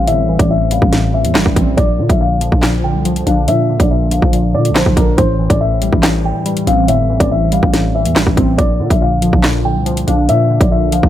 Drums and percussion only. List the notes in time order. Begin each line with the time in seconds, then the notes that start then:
0.07 closed hi-hat
0.39 kick, closed hi-hat
0.71 closed hi-hat
0.82 kick
0.93 snare, closed hi-hat
1.25 closed hi-hat
1.35 snare, clap
1.46 kick
1.56 kick, closed hi-hat
1.78 kick, closed hi-hat
2.10 kick, closed hi-hat
2.41 closed hi-hat
2.52 kick
2.62 snare, clap, closed hi-hat
3.05 closed hi-hat
3.16 closed hi-hat
3.27 closed hi-hat
3.48 closed hi-hat
3.80 kick, closed hi-hat
4.11 closed hi-hat
4.22 kick
4.33 closed hi-hat
4.65 closed hi-hat
4.75 snare, clap
4.86 kick
4.97 kick, closed hi-hat
5.18 kick, closed hi-hat
5.50 kick, closed hi-hat
5.82 closed hi-hat
5.93 kick
6.03 snare, clap, closed hi-hat
6.46 closed hi-hat
6.57 closed hi-hat
6.67 closed hi-hat
6.88 closed hi-hat
7.20 kick, closed hi-hat
7.52 closed hi-hat
7.63 kick
7.73 snare, closed hi-hat
8.05 closed hi-hat
8.16 snare, clap
8.27 kick
8.37 kick, closed hi-hat
8.59 kick, closed hi-hat
8.90 kick, closed hi-hat
9.22 closed hi-hat
9.33 kick
9.43 snare, clap, closed hi-hat
9.86 closed hi-hat
9.97 closed hi-hat
10.08 closed hi-hat
10.29 closed hi-hat
10.61 kick, closed hi-hat
10.92 closed hi-hat
11.03 kick